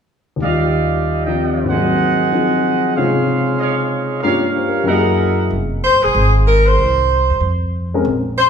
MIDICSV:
0, 0, Header, 1, 5, 480
1, 0, Start_track
1, 0, Key_signature, -4, "minor"
1, 0, Tempo, 317965
1, 631, Time_signature, 4, 2, 24, 8
1, 12827, End_track
2, 0, Start_track
2, 0, Title_t, "Trumpet section"
2, 0, Program_c, 0, 61
2, 623, Note_on_c, 0, 67, 69
2, 628, Note_on_c, 0, 74, 65
2, 632, Note_on_c, 0, 75, 57
2, 632, Note_on_c, 0, 77, 68
2, 1881, Note_off_c, 0, 75, 0
2, 1881, Note_off_c, 0, 77, 0
2, 1899, Note_on_c, 0, 75, 51
2, 1899, Note_on_c, 0, 77, 49
2, 1901, Note_on_c, 0, 79, 58
2, 2532, Note_off_c, 0, 75, 0
2, 2541, Note_on_c, 0, 78, 75
2, 2550, Note_on_c, 0, 75, 65
2, 2552, Note_off_c, 0, 67, 0
2, 2553, Note_on_c, 0, 68, 69
2, 2555, Note_off_c, 0, 74, 0
2, 2555, Note_off_c, 0, 77, 0
2, 2555, Note_on_c, 0, 72, 62
2, 2556, Note_off_c, 0, 79, 0
2, 4446, Note_off_c, 0, 68, 0
2, 4448, Note_off_c, 0, 72, 0
2, 4464, Note_on_c, 0, 68, 63
2, 4466, Note_on_c, 0, 72, 57
2, 4466, Note_on_c, 0, 73, 52
2, 4470, Note_on_c, 0, 77, 65
2, 4472, Note_off_c, 0, 78, 0
2, 4476, Note_off_c, 0, 75, 0
2, 5416, Note_off_c, 0, 77, 0
2, 5420, Note_off_c, 0, 73, 0
2, 5434, Note_on_c, 0, 77, 57
2, 5436, Note_on_c, 0, 75, 49
2, 5438, Note_on_c, 0, 73, 59
2, 6369, Note_off_c, 0, 73, 0
2, 6371, Note_off_c, 0, 77, 0
2, 6383, Note_on_c, 0, 70, 59
2, 6388, Note_on_c, 0, 73, 59
2, 6389, Note_on_c, 0, 77, 76
2, 6392, Note_on_c, 0, 67, 68
2, 6393, Note_off_c, 0, 68, 0
2, 6394, Note_off_c, 0, 72, 0
2, 6398, Note_off_c, 0, 75, 0
2, 7343, Note_off_c, 0, 70, 0
2, 7354, Note_off_c, 0, 73, 0
2, 7354, Note_off_c, 0, 77, 0
2, 7356, Note_off_c, 0, 67, 0
2, 7359, Note_on_c, 0, 78, 75
2, 7361, Note_on_c, 0, 70, 64
2, 7362, Note_on_c, 0, 68, 65
2, 7362, Note_on_c, 0, 76, 63
2, 7365, Note_on_c, 0, 75, 63
2, 8319, Note_off_c, 0, 78, 0
2, 8320, Note_off_c, 0, 68, 0
2, 8320, Note_off_c, 0, 70, 0
2, 8320, Note_off_c, 0, 76, 0
2, 8322, Note_off_c, 0, 75, 0
2, 12827, End_track
3, 0, Start_track
3, 0, Title_t, "Saxophone section"
3, 0, Program_c, 1, 65
3, 8821, Note_on_c, 1, 72, 97
3, 9096, Note_off_c, 1, 72, 0
3, 9101, Note_on_c, 1, 68, 83
3, 9582, Note_off_c, 1, 68, 0
3, 9760, Note_on_c, 1, 70, 82
3, 10044, Note_off_c, 1, 70, 0
3, 10060, Note_on_c, 1, 72, 74
3, 11499, Note_off_c, 1, 72, 0
3, 12649, Note_on_c, 1, 72, 85
3, 12783, Note_off_c, 1, 72, 0
3, 12827, End_track
4, 0, Start_track
4, 0, Title_t, "Grand piano"
4, 0, Program_c, 2, 0
4, 547, Note_on_c, 2, 39, 36
4, 577, Note_on_c, 2, 51, 37
4, 621, Note_on_c, 2, 55, 35
4, 660, Note_on_c, 2, 74, 36
4, 706, Note_on_c, 2, 65, 43
4, 1884, Note_off_c, 2, 51, 0
4, 1907, Note_on_c, 2, 51, 34
4, 1919, Note_on_c, 2, 53, 31
4, 1941, Note_on_c, 2, 60, 28
4, 1956, Note_on_c, 2, 63, 38
4, 2479, Note_on_c, 2, 44, 38
4, 2494, Note_off_c, 2, 51, 0
4, 2514, Note_off_c, 2, 39, 0
4, 2517, Note_on_c, 2, 51, 31
4, 2551, Note_off_c, 2, 55, 0
4, 2561, Note_on_c, 2, 58, 30
4, 2565, Note_off_c, 2, 53, 0
4, 2571, Note_off_c, 2, 74, 0
4, 2576, Note_off_c, 2, 60, 0
4, 2584, Note_off_c, 2, 63, 0
4, 2594, Note_off_c, 2, 65, 0
4, 2607, Note_on_c, 2, 60, 30
4, 2654, Note_on_c, 2, 54, 41
4, 3483, Note_off_c, 2, 60, 0
4, 3503, Note_on_c, 2, 53, 37
4, 3506, Note_on_c, 2, 60, 35
4, 3534, Note_on_c, 2, 63, 33
4, 3539, Note_on_c, 2, 68, 41
4, 4441, Note_off_c, 2, 44, 0
4, 4460, Note_off_c, 2, 51, 0
4, 4472, Note_off_c, 2, 53, 0
4, 4473, Note_off_c, 2, 60, 0
4, 4478, Note_off_c, 2, 63, 0
4, 4481, Note_on_c, 2, 49, 40
4, 4482, Note_off_c, 2, 58, 0
4, 4487, Note_on_c, 2, 56, 37
4, 4490, Note_off_c, 2, 68, 0
4, 4499, Note_on_c, 2, 48, 34
4, 4501, Note_on_c, 2, 63, 33
4, 4511, Note_on_c, 2, 65, 45
4, 4528, Note_off_c, 2, 54, 0
4, 6390, Note_off_c, 2, 65, 0
4, 6391, Note_on_c, 2, 43, 38
4, 6401, Note_off_c, 2, 49, 0
4, 6401, Note_on_c, 2, 55, 39
4, 6404, Note_off_c, 2, 56, 0
4, 6406, Note_on_c, 2, 58, 36
4, 6410, Note_off_c, 2, 48, 0
4, 6411, Note_off_c, 2, 63, 0
4, 6411, Note_on_c, 2, 61, 34
4, 6413, Note_on_c, 2, 65, 45
4, 6899, Note_on_c, 2, 72, 36
4, 7076, Note_on_c, 2, 70, 38
4, 7176, Note_off_c, 2, 72, 0
4, 7240, Note_on_c, 2, 67, 42
4, 7298, Note_on_c, 2, 42, 50
4, 7303, Note_off_c, 2, 70, 0
4, 7327, Note_on_c, 2, 54, 42
4, 7338, Note_off_c, 2, 58, 0
4, 7355, Note_off_c, 2, 43, 0
4, 7360, Note_off_c, 2, 55, 0
4, 7361, Note_on_c, 2, 58, 46
4, 7365, Note_off_c, 2, 61, 0
4, 7366, Note_off_c, 2, 65, 0
4, 7395, Note_on_c, 2, 75, 47
4, 7430, Note_on_c, 2, 64, 41
4, 7453, Note_on_c, 2, 68, 49
4, 7466, Note_off_c, 2, 67, 0
4, 8288, Note_off_c, 2, 42, 0
4, 8303, Note_off_c, 2, 54, 0
4, 8319, Note_off_c, 2, 58, 0
4, 8337, Note_off_c, 2, 75, 0
4, 8354, Note_off_c, 2, 64, 0
4, 8365, Note_off_c, 2, 68, 0
4, 11990, Note_on_c, 2, 56, 52
4, 11993, Note_on_c, 2, 60, 50
4, 11995, Note_on_c, 2, 61, 43
4, 12002, Note_on_c, 2, 70, 58
4, 12140, Note_off_c, 2, 56, 0
4, 12141, Note_off_c, 2, 60, 0
4, 12142, Note_off_c, 2, 61, 0
4, 12146, Note_off_c, 2, 70, 0
4, 12827, End_track
5, 0, Start_track
5, 0, Title_t, "Upright bass"
5, 0, Program_c, 3, 32
5, 8309, Note_on_c, 3, 29, 68
5, 8908, Note_off_c, 3, 29, 0
5, 8959, Note_on_c, 3, 31, 46
5, 9107, Note_off_c, 3, 31, 0
5, 9126, Note_on_c, 3, 28, 54
5, 9271, Note_off_c, 3, 28, 0
5, 9277, Note_on_c, 3, 32, 79
5, 10188, Note_off_c, 3, 32, 0
5, 10242, Note_on_c, 3, 36, 66
5, 10970, Note_off_c, 3, 36, 0
5, 11020, Note_on_c, 3, 39, 65
5, 11171, Note_off_c, 3, 39, 0
5, 11180, Note_on_c, 3, 41, 70
5, 12096, Note_off_c, 3, 41, 0
5, 12149, Note_on_c, 3, 34, 77
5, 12827, Note_off_c, 3, 34, 0
5, 12827, End_track
0, 0, End_of_file